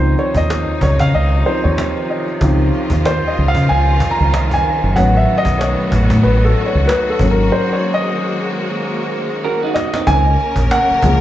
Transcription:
Already playing: fingered electric bass C#2, string section C3 D#3 F3 D#4, upright piano F3 C4 D#4 C5
0.04 cajon slap
0.18 upright piano C#5, cajon slap
0.35 fingered electric bass D#2, upright piano D#5, cajon bass
0.50 cajon slap
0.69 cajon slap
0.81 fingered electric bass C#2, upright piano C#5, cajon bass
0.99 fingered electric bass C#3, upright piano F5, cajon bass
1.13 fingered electric bass C#2, upright piano D#5, cajon slap
1.30 cajon slap
1.45 upright piano F3 C4 D#4 C5, cajon slap
1.64 fingered electric bass D#2, upright piano C#5, cajon slap
1.78 cajon slap
1.96 cajon slap
2.10 upright piano D#5
2.28 cajon slap
2.40 fingered electric bass C#2, upright piano F3 C4 D#4, string section F4, cajon bass
2.59 cajon slap
2.73 cajon slap
2.90 fingered electric bass D#2, cajon bass
3.05 upright piano C5, cajon slap
3.24 upright piano D#5, cajon slap
3.36 fingered electric bass C#2, cajon slap
3.48 upright piano F5
3.55 fingered electric bass C#3, cajon bass
3.68 fingered electric bass C#2, upright piano G#5, cajon slap
3.86 cajon slap
4.00 cajon bass
4.11 upright piano A#5
4.19 fingered electric bass C#2, cajon slap
4.34 fingered electric bass C2, cajon slap
4.51 upright piano G#5, cajon bass
4.83 fingered electric bass F#1, cajon slap
4.96 fingered electric bass A1, upright piano F#3 B3 C#4 F#5, string section A3 B3 F#4, cajon bass
5.15 upright piano E5, cajon slap
5.28 cajon slap
5.38 upright piano D#5
5.45 fingered electric bass B1, cajon bass
5.59 upright piano C#5, cajon slap
5.80 cajon slap
5.92 fingered electric bass A1, cajon bass
6.10 fingered electric bass A2, cajon bass
6.23 fingered electric bass A1, upright piano B4, cajon slap
6.42 upright piano A4, cajon slap
6.57 cajon slap
6.66 upright piano C#5
6.75 fingered electric bass C#2, cajon slap
6.87 upright piano B4, cajon slap
7.06 upright piano A4, cajon slap
7.19 fingered electric bass G#1, upright piano F#3 A#3 C#4, string section G#3 A#3, cajon bass
7.31 upright piano A#4
7.38 cajon slap
7.52 upright piano C5
7.73 upright piano C#5
7.94 upright piano D#5
9.45 clean electric guitar F#4 A#4
9.63 clean electric guitar D#4 F#4
9.74 upright piano D#5, cajon slap
9.94 clean electric guitar C4 D#4, cajon slap
10.06 fingered electric bass C#2, string section C#3 A#3 C#4 A#4, upright piano G#5, cajon bass
10.25 cajon slap
10.39 cajon slap
10.56 fingered electric bass A#1, cajon bass
10.71 upright piano F#5, cajon slap
10.90 muted fingered electric bass stroke, cajon slap
11.02 fingered electric bass C#2, upright piano F3 G#3 A#3, cajon bass

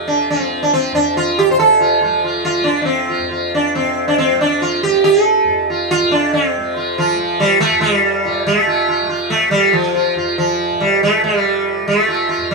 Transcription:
Already playing: tanpura F2 C3 F3
0.07 sitar D4
0.30 sitar C4
0.36 tanpura F3
0.63 sitar D4
0.73 sitar C4
0.92 tanpura F2, sitar D4
1.17 sitar F4
1.39 sitar G4
1.48 tanpura C3, sitar C5
1.59 sitar A4
1.80 sitar F4
2.01 tanpura F3, sitar F4
2.24 sitar F4
2.45 sitar F4
2.60 tanpura F3, sitar D4
2.82 sitar C4 D4
3.09 sitar F4
3.18 tanpura F2
3.31 sitar F4
3.55 sitar D4
3.75 tanpura C3, sitar C4
4.08 sitar D4
4.18 sitar C4
4.31 tanpura F3
4.41 sitar D4
4.62 sitar F4
4.83 tanpura F3, sitar G4
5.04 sitar A4
5.44 tanpura F2
5.70 sitar F4
5.91 sitar F4
6.00 tanpura C3
6.11 sitar D4
6.33 sitar C4
6.57 tanpura F3
6.76 sitar F4
6.98 sitar F3 F4
7.14 tanpura F3
7.39 sitar G3 F4
7.60 sitar A3 F4
7.70 tanpura F2
7.80 sitar G3 F4
8.24 tanpura C3, sitar F4
8.45 tanpura C3, sitar A3
8.67 sitar F4
8.88 sitar F4
9.02 tanpura F3
9.09 sitar F4
9.30 sitar A3
9.51 sitar G3
9.56 tanpura F3
9.73 sitar F3
9.95 sitar F4
10.14 tanpura F2, sitar F4
10.38 sitar F3
10.70 tanpura C3
10.80 sitar G3
11.03 sitar A3
11.24 tanpura F3, sitar G3
11.82 tanpura F3
11.88 sitar A3
12.08 sitar F4
12.29 sitar F4
12.37 tanpura F2
12.51 sitar G3

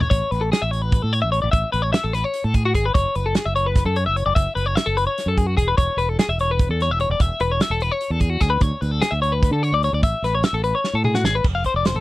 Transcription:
0.00 clean electric guitar C#5, floor tom
0.10 fingered electric bass A1, clean electric guitar C#5, kick, closed hi-hat
0.31 fingered electric bass A1, clean electric guitar B4, closed hi-hat
0.41 clean electric guitar A4
0.52 clean electric guitar G#4, snare, closed hi-hat
0.62 fingered electric bass A1, clean electric guitar E5
0.71 clean electric guitar C#5, closed hi-hat
0.82 clean electric guitar B4
0.92 kick, closed hi-hat
1.02 fingered electric bass A2, clean electric guitar A4
1.13 clean electric guitar C#5, closed hi-hat
1.22 fingered electric bass A1, clean electric guitar E5
1.32 clean electric guitar C#5, closed hi-hat
1.42 fingered electric bass A1, clean electric guitar D5
1.52 fingered electric bass A1, clean electric guitar E5, kick, closed hi-hat
1.72 fingered electric bass A1, clean electric guitar B4, closed hi-hat
1.82 clean electric guitar C#5
1.93 clean electric guitar E5, snare, closed hi-hat
2.04 fingered electric bass A1, clean electric guitar A4
2.13 clean electric guitar B4, snare, closed hi-hat
2.24 clean electric guitar C#5
2.34 closed hi-hat
2.44 fingered electric bass A2, clean electric guitar A4
2.54 clean electric guitar G#4, kick, closed hi-hat
2.66 clean electric guitar F#4
2.75 fingered electric bass G#1, clean electric guitar G#4, kick, closed hi-hat
2.86 clean electric guitar B4
2.94 fingered electric bass F#1, clean electric guitar C#5, kick, closed hi-hat
3.15 fingered electric bass F#1, clean electric guitar B4, closed hi-hat
3.26 clean electric guitar A4
3.35 clean electric guitar G#4, snare, closed hi-hat
3.46 fingered electric bass F#1, clean electric guitar E5
3.56 clean electric guitar C#5, closed hi-hat
3.66 clean electric guitar B4
3.76 kick, snare, closed hi-hat
3.85 fingered electric bass F#2, clean electric guitar A4
3.96 clean electric guitar C#5, closed hi-hat
4.06 fingered electric bass F#1, clean electric guitar E5
4.16 clean electric guitar C#5, closed hi-hat
4.26 fingered electric bass F#1, clean electric guitar D5
4.35 fingered electric bass F#1, clean electric guitar E5, kick, closed hi-hat
4.55 fingered electric bass F#1, clean electric guitar B4, closed hi-hat
4.66 clean electric guitar C#5
4.75 clean electric guitar E5, snare, closed hi-hat
4.86 fingered electric bass F#1, clean electric guitar A4
4.97 clean electric guitar B4, closed hi-hat
5.07 clean electric guitar C#5
5.18 snare, closed hi-hat
5.26 fingered electric bass F#2, clean electric guitar A4
5.37 clean electric guitar G#4, kick, closed hi-hat
5.47 clean electric guitar F#4
5.57 fingered electric bass E1, clean electric guitar G#4, kick, closed hi-hat
5.68 clean electric guitar B4
5.77 fingered electric bass E1, clean electric guitar C#5, kick, closed hi-hat
5.97 fingered electric bass E1, clean electric guitar B4, closed hi-hat
6.09 clean electric guitar A4
6.19 clean electric guitar G#4, snare, closed hi-hat
6.28 fingered electric bass E1, clean electric guitar E5
6.39 clean electric guitar C#5, closed hi-hat
6.51 clean electric guitar B4
6.59 kick, closed hi-hat
6.69 fingered electric bass E2, clean electric guitar A4
6.80 clean electric guitar C#5, snare, closed hi-hat
6.90 fingered electric bass E1, clean electric guitar E5
7.00 clean electric guitar C#5, closed hi-hat
7.10 fingered electric bass E1, clean electric guitar D5
7.20 fingered electric bass E1, clean electric guitar E5, kick, closed hi-hat
7.40 fingered electric bass E1, clean electric guitar B4, closed hi-hat
7.52 clean electric guitar C#5
7.60 clean electric guitar E5, snare, closed hi-hat
7.70 fingered electric bass E1, clean electric guitar A4
7.80 clean electric guitar B4, closed hi-hat
7.92 clean electric guitar C#5
8.01 closed hi-hat
8.10 fingered electric bass E2, clean electric guitar A4
8.20 clean electric guitar G#4, kick, closed hi-hat
8.30 clean electric guitar F#4
8.41 fingered electric bass D2, clean electric guitar G#4, kick, snare, closed hi-hat
8.50 clean electric guitar B4
8.61 fingered electric bass D2, clean electric guitar C#5, kick, closed hi-hat
8.81 fingered electric bass D2, clean electric guitar B4, closed hi-hat
8.91 clean electric guitar A4
9.02 clean electric guitar G#4, snare, closed hi-hat
9.11 fingered electric bass D2, clean electric guitar E5
9.22 clean electric guitar C#5, closed hi-hat
9.32 clean electric guitar B4
9.43 kick, closed hi-hat
9.51 fingered electric bass D3, clean electric guitar A4
9.63 clean electric guitar C#5, closed hi-hat
9.72 fingered electric bass D2, clean electric guitar D5
9.83 clean electric guitar C#5, closed hi-hat
9.93 fingered electric bass D2, clean electric guitar D5
10.03 fingered electric bass A1, clean electric guitar E5, kick, closed hi-hat
10.22 fingered electric bass A1, clean electric guitar B4, snare, closed hi-hat
10.35 clean electric guitar C#5
10.43 clean electric guitar E5, snare, closed hi-hat
10.53 fingered electric bass A1, clean electric guitar A4
10.64 clean electric guitar B4, closed hi-hat
10.75 clean electric guitar C#5
10.84 snare
10.94 fingered electric bass A2, clean electric guitar A4
11.04 clean electric guitar G#4, mid tom
11.15 clean electric guitar F#4, snare
11.24 fingered electric bass G#1, clean electric guitar G#4, snare
11.35 clean electric guitar B4
11.44 fingered electric bass F1, kick, crash
11.55 clean electric guitar F5
11.64 clean electric guitar C5, kick, closed hi-hat
11.74 fingered electric bass F1, clean electric guitar D5
11.85 clean electric guitar C5, snare, closed hi-hat
11.94 fingered electric bass A1, clean electric guitar A4

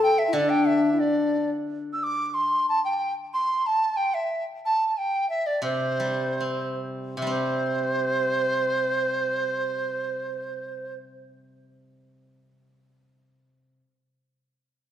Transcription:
Already playing: xiao A4
0.02 dizi G5
0.18 dizi E5
0.28 xiao E4
0.33 guzheng D3, xiao D4, dizi D5
0.49 dizi G5
0.66 dizi E5
0.93 xiao E4
0.99 xiao D4, dizi D5
1.92 dizi E6
2.03 dizi D6
2.25 dizi D6
2.33 dizi C6
2.68 dizi A5
2.84 dizi G5
3.33 dizi C6
3.66 dizi A5
3.96 dizi G5
4.13 dizi E5
4.65 dizi A5
4.87 dizi A5
4.97 dizi G5
5.29 dizi E5
5.46 dizi D5
5.62 guzheng C3, dizi C5
6.00 guzheng G3
6.40 guzheng C4
7.17 guzheng C3
7.22 guzheng G3
7.27 guzheng C4, dizi C5

